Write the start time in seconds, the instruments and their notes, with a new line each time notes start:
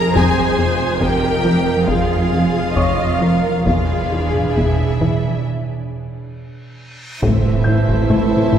Already playing: double bass section F1, cello section F2, ambient pad F4 G#4 D#5, viola section G#4, violin section A#4 A#5
0.14 double bass section F1, cello section F2, analog synth bass F2, ambient pad F4 D#5, violin section G#4 G#5, viola section C5, taiko
0.58 analog synth bass F2
1.01 analog synth bass F2, violin section G4 G5, viola section A#4, taiko
1.45 analog synth bass F3
1.86 analog synth bass F2, violin section F4 F5, viola section G#4, taiko
2.32 analog synth bass F2
2.75 analog synth bass F2, grand piano C#5 C#6, viola section D#5, taiko
3.20 analog synth bass F3, viola section A#4
3.64 double bass section E1, cello section E2, analog synth bass E2, ambient pad D4 G#4 B4, violin section F4 F5, viola section G#4, taiko, reverse cymbal
4.12 analog synth bass E2
4.34 taiko mid
4.55 analog synth bass E2, violin section E4 E5, taiko
5.01 analog synth bass E3, taiko mid
7.20 double bass section A1, cello section A2, analog synth bass A2, trombone section E3 A3, french horn section C4 E4, viola section E4, ambient pad A4 C5 E5, violin section C5 E5, taiko, impact
7.64 analog synth bass A2, grand piano G6
7.88 taiko
8.10 analog synth bass A3, taiko mid
8.32 taiko mid
8.52 analog synth bass A2, taiko